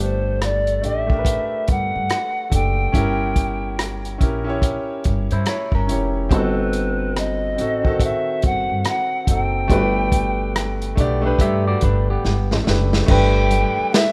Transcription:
Already playing: G1 A3 D4 G4 A4
0.02 C5
0.42 D5, cross-stick, closed hi-hat
0.67 closed hi-hat
0.81 A1 A3 D4 G4 E5, closed hi-hat
0.86 D5
1.07 A3 D4 G4, kick
1.12 A#4
1.19 B4
1.25 kick, closed hi-hat
1.68 G1 F#5, kick, closed hi-hat
1.96 G2
2.10 cross-stick, closed hi-hat
2.50 F#1 A3 D4 G4, kick, closed hi-hat
2.54 A4 G5
2.92 G1 C#4 E4 G4, kick, closed hi-hat
2.97 A#4
3.36 kick, closed hi-hat
3.79 cross-stick, closed hi-hat
4.05 closed hi-hat
4.18 A#1 C#4 E4 G4, kick, closed hi-hat
4.23 A#4
4.44 C#4 E4 G4
4.49 C#5
4.62 kick, closed hi-hat
5.04 G1, kick, closed hi-hat
5.31 G2 E4 C5, closed hi-hat
5.46 E4 C#5, cross-stick, closed hi-hat
5.72 G1 C#4 A#4, kick
5.87 F1 C#4 E4 G4, closed hi-hat
5.92 C#5
6.29 G1 C4 D#4 F#4, kick, closed hi-hat
6.34 A4 B4
6.73 closed hi-hat
7.17 D#5, cross-stick, closed hi-hat
7.56 A1 C4 D#4 F#4, closed hi-hat
7.61 A4
7.83 D#3 C4 F#4, kick
7.87 A4
8.00 E5, kick, closed hi-hat
8.42 G1 F#5, kick, closed hi-hat
8.69 G2
8.85 F#5, cross-stick, closed hi-hat
9.25 F#1 F#3 C4 D#4, kick, closed hi-hat
9.30 A4 G5
9.68 G1 A3 D4 F#4, kick, closed hi-hat
9.73 B4
9.78 G4
10.12 kick, closed hi-hat
10.56 cross-stick, closed hi-hat
10.82 closed hi-hat
10.96 B1 A3 D4 G4, kick, closed hi-hat
11.00 B3 D5
11.22 A3 D4 G4 B4
11.26 D4 B4
11.39 G2 G4 E5, kick, closed hi-hat
11.67 F#4 D5
11.81 G1 D4 B4, kick, closed hi-hat
12.10 B3 G4
12.25 G1, snare
12.51 A1, snare
12.64 A3 D4 G4, snare
12.68 F#1 B4
12.93 snare
13.06 G1 A3 D4 G4, kick, crash, muted conga, low conga
13.10 B4 G5
13.51 closed hi-hat, high conga
13.77 muted upright bass stroke, high conga
13.93 E5, snare, closed hi-hat, muted conga

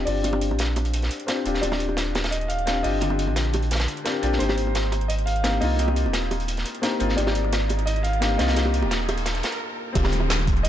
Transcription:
Already playing: C4 D4 F4 G4
0.05 G1 C4 D4 F4 G4 D5, closed hi-hat, open hi-hat
0.21 C4 D4 F4, closed hi-hat, high bongo
0.27 G4
0.33 high bongo
0.41 closed hi-hat
0.50 A#1, high bongo
0.59 snare, closed hi-hat
0.76 closed hi-hat, high bongo
0.85 closed hi-hat
0.94 closed hi-hat
1.02 snare, closed hi-hat
1.11 closed hi-hat
1.20 closed hi-hat
1.27 C4 D4 F4 G4 C5, snare, closed hi-hat
1.44 D#1 C4 D4 F4 G4, closed hi-hat
1.54 snare
1.60 D#1 C4 D4 F4 D5, closed hi-hat, high bongo
1.66 G4
1.72 snare, high bongo
1.80 closed hi-hat
1.89 high bongo
1.97 snare, closed hi-hat
2.15 snare, closed hi-hat, high bongo
2.24 snare, closed hi-hat
2.31 D#5, closed hi-hat
2.41 closed hi-hat
2.48 F5, closed hi-hat
2.59 closed hi-hat
2.66 C4 D4 F4 G4, snare, closed hi-hat
2.83 G1 C4 D4 F4 G4 D#5, closed hi-hat, open hi-hat
2.99 D3 C4 F4, closed hi-hat, high bongo
3.04 G4
3.10 high bongo
3.19 closed hi-hat
3.27 A#1, high bongo
3.36 snare, closed hi-hat
3.53 closed hi-hat, high bongo
3.62 closed hi-hat
3.71 snare, closed hi-hat
3.75 snare, closed hi-hat
3.80 snare, closed hi-hat
3.88 closed hi-hat
3.97 closed hi-hat
4.04 C4 D4 F4 G4 A#4, snare, closed hi-hat
4.21 A#1 C4 D4 F4 G4, closed hi-hat
4.33 snare
4.37 G#1 A#3 C4 D#4 C5, closed hi-hat, riser, high bongo
4.43 G4
4.49 snare, high bongo
4.58 closed hi-hat
4.67 high bongo
4.75 snare, closed hi-hat
4.92 closed hi-hat, high bongo
5.01 closed hi-hat
5.08 D#5, closed hi-hat
5.19 closed hi-hat
5.26 F5, closed hi-hat
5.36 closed hi-hat
5.43 A#3 C4 D#4 G4, snare, closed hi-hat
5.60 C2 A#3 C4 D#4 F4 D#5, closed hi-hat, open hi-hat
5.76 A#3 C4 D#4, closed hi-hat, high bongo
5.82 G4
5.88 high bongo
5.96 closed hi-hat
6.05 D#1, high bongo
6.13 snare, closed hi-hat
6.31 closed hi-hat, high bongo
6.40 closed hi-hat
6.48 closed hi-hat
6.57 snare, closed hi-hat
6.65 closed hi-hat
6.75 closed hi-hat
6.82 A#3 C4 D#4 G4 C5, snare, closed hi-hat
6.99 G#1 A#3 C4 D#4 F4, closed hi-hat
7.09 snare
7.15 G#1 A#3 C4 D#4 D5, closed hi-hat, high bongo
7.21 G4
7.27 snare, high bongo
7.35 closed hi-hat
7.44 high bongo
7.53 snare, closed hi-hat
7.69 closed hi-hat, high bongo
7.79 closed hi-hat
7.86 D#5, closed hi-hat
7.96 closed hi-hat
8.03 F5, closed hi-hat
8.13 closed hi-hat
8.20 A#3 C4 D#4 G4, snare, closed hi-hat
8.38 C2 A#3 C4 D#4 F4 D#5, snare, closed hi-hat
8.48 snare, closed hi-hat
8.54 A#3 C4 D#4, snare, closed hi-hat, high bongo
8.59 G4
8.65 high bongo
8.74 closed hi-hat
8.82 D#1, high bongo
8.91 snare, closed hi-hat
9.09 closed hi-hat, high bongo
9.17 closed hi-hat
9.26 snare, closed hi-hat
9.35 snare, closed hi-hat
9.43 snare, closed hi-hat
9.52 closed hi-hat
9.93 D#1 D3 C4 F4, kick, closed hi-hat, downlifter, high bongo
9.98 G4
10.04 snare, high bongo
10.12 snare, closed hi-hat
10.20 high bongo
10.30 snare, closed hi-hat
10.39 snare
10.47 kick, closed hi-hat
10.56 closed hi-hat
10.63 D#5, closed hi-hat

